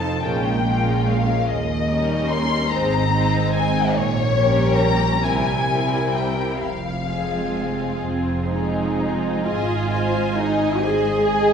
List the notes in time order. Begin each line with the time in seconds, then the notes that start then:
Already playing: F3 D#4 F4 A4 A5
0.23 A#1 A#2 G#3 C#4 F4 A#4 G5
0.66 G#3 C#4 F4 A#4
1.08 F5
1.49 D#2 D#5
1.89 G3 C#4 D#4 A#4
2.30 C6
2.69 G#1 G#2 G#3 C4 D#4 C5 A#5
3.11 G#3 C4 D#4 C5
3.53 G#5
3.93 A#1 A#2 C#5
4.35 G3 C#4 G4 A#4
4.78 A#5
5.23 C2 C3 G3 C4 E4 A#4 G#5
5.68 G3 C4 E4 A#4
6.15 G5
6.61 F1 F2 F5
7.08 G#3 C4 F4 G#4
8.01 F1 F2 C4
8.48 G#3 C4 D#4 F4 G#4
9.44 G#1 G#2 F4 G#4 D#5 G#5
9.90 C5 D#5 G#5
10.36 D#4 G#4 D#5 G#5
10.81 G#4 C5 D#5 G#5
11.26 G#4 D#5 G#5